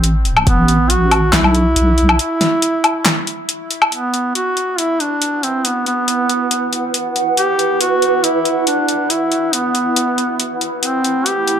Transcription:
Already playing: A1 C4
0.04 closed hi-hat
0.25 closed hi-hat
0.37 low woodblock
0.47 A1 B3, kick, closed hi-hat
0.68 closed hi-hat
0.90 F#4, closed hi-hat
1.11 closed hi-hat, low woodblock
1.33 B1 E4, snare, clap, closed hi-hat
1.44 low woodblock
1.55 closed hi-hat
1.76 B1, closed hi-hat
1.98 closed hi-hat
2.09 low woodblock
2.19 E4, closed hi-hat
2.41 snare, closed hi-hat
2.62 closed hi-hat
2.84 closed hi-hat, low woodblock
3.06 snare, clap, closed hi-hat
3.27 closed hi-hat
3.49 closed hi-hat
3.71 closed hi-hat
3.82 low woodblock
3.92 B3 E4 B4 F#5, closed hi-hat
4.14 closed hi-hat
4.35 F#4, closed hi-hat
4.57 closed hi-hat
4.78 E4, closed hi-hat
5.00 D4, closed hi-hat
5.22 closed hi-hat
5.43 C4, closed hi-hat
5.65 B3, closed hi-hat
5.86 B3, closed hi-hat
6.08 closed hi-hat
6.29 closed hi-hat
6.51 closed hi-hat
6.73 closed hi-hat
6.94 closed hi-hat
7.16 closed hi-hat
7.37 G4, closed hi-hat
7.59 closed hi-hat
7.81 F#4, closed hi-hat
8.02 closed hi-hat
8.24 E4, closed hi-hat
8.45 closed hi-hat
8.67 D4, closed hi-hat
8.88 closed hi-hat
9.10 E4, closed hi-hat
9.32 closed hi-hat
9.53 B3, closed hi-hat
9.75 closed hi-hat
9.96 closed hi-hat
10.18 closed hi-hat
10.40 closed hi-hat
10.61 closed hi-hat
10.82 A3 C4 B4, closed hi-hat
11.04 closed hi-hat
11.26 G4, closed hi-hat
11.48 closed hi-hat

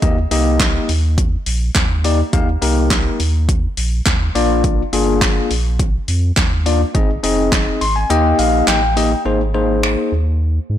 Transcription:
0.02 D#2 A#3 D#4 G4 D#5, kick, closed hi-hat
0.31 C2 A#3 D#4 G4 D#5, open hi-hat
0.60 kick, snare, clap, closed hi-hat
0.89 D#2, open hi-hat
1.18 kick, closed hi-hat
1.46 A#1, open hi-hat
1.75 D#2, kick, snare, clap, closed hi-hat
2.04 A#3 D#4 G4 D5, open hi-hat
2.33 D#2 A#3 D#4 G4 F5, kick, closed hi-hat
2.62 C2 A#3 D#4 G4 A#4, open hi-hat
2.90 kick, snare, clap, closed hi-hat
3.20 D#2, open hi-hat
3.49 kick, closed hi-hat
3.77 A#1, open hi-hat
4.06 D#2, kick, snare, clap, closed hi-hat
4.35 A#1 A#3 D4 F4 D5, open hi-hat
4.64 kick, closed hi-hat
4.93 G1 A#3 D4 F4 G#4, open hi-hat
5.21 kick, snare, clap, closed hi-hat
5.51 A#1, open hi-hat
5.79 kick, closed hi-hat
6.08 F2, open hi-hat
6.36 D#2, kick, snare, clap, closed hi-hat
6.66 A#3 D4 F4 D5, open hi-hat
6.95 G#1 C4 D#4 G#4 D#5, kick, closed hi-hat
7.23 F1 C4 D#4 G#4 D#5, open hi-hat
7.52 kick, snare, clap, closed hi-hat
7.81 G#1 C6, open hi-hat
7.96 G#5
8.10 D#2 A#3 D#4 G4 D#5 G5, closed hi-hat
8.39 A#1 F5, open hi-hat
8.67 A1 G5, snare, clap, closed hi-hat
8.96 A#3 D#4 G4 D#5, open hi-hat
9.25 G#1 A#3 D#4 G#4 C5
9.54 A#3 D#4 G#4 C5
9.83 finger snap
10.12 D#2
10.70 G#2

